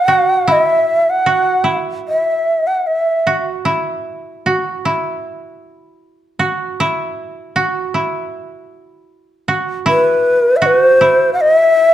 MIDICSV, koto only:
0, 0, Header, 1, 2, 480
1, 0, Start_track
1, 0, Tempo, 790514
1, 297, Time_signature, 4, 2, 24, 8
1, 3179, Tempo, 769231
1, 7362, End_track
2, 0, Start_track
2, 0, Title_t, "Koto"
2, 0, Program_c, 0, 107
2, 0, Note_on_c, 0, 64, 51
2, 48, Note_on_c, 0, 66, 50
2, 286, Note_off_c, 0, 64, 0
2, 288, Note_on_c, 0, 64, 57
2, 764, Note_off_c, 0, 66, 0
2, 766, Note_on_c, 0, 66, 50
2, 993, Note_off_c, 0, 64, 0
2, 995, Note_on_c, 0, 64, 45
2, 1981, Note_off_c, 0, 66, 0
2, 1983, Note_on_c, 0, 66, 46
2, 2215, Note_off_c, 0, 64, 0
2, 2217, Note_on_c, 0, 64, 55
2, 2706, Note_off_c, 0, 66, 0
2, 2708, Note_on_c, 0, 66, 47
2, 2944, Note_off_c, 0, 64, 0
2, 2947, Note_on_c, 0, 64, 46
2, 3899, Note_off_c, 0, 66, 0
2, 3902, Note_on_c, 0, 66, 51
2, 4153, Note_off_c, 0, 64, 0
2, 4156, Note_on_c, 0, 64, 59
2, 4626, Note_off_c, 0, 66, 0
2, 4628, Note_on_c, 0, 66, 50
2, 4866, Note_off_c, 0, 64, 0
2, 4868, Note_on_c, 0, 64, 46
2, 5826, Note_off_c, 0, 66, 0
2, 5829, Note_on_c, 0, 66, 53
2, 6061, Note_off_c, 0, 64, 0
2, 6063, Note_on_c, 0, 64, 64
2, 6534, Note_off_c, 0, 66, 0
2, 6537, Note_on_c, 0, 66, 57
2, 6779, Note_off_c, 0, 64, 0
2, 6781, Note_on_c, 0, 64, 52
2, 7362, Note_off_c, 0, 64, 0
2, 7362, Note_off_c, 0, 66, 0
2, 7362, End_track
0, 0, End_of_file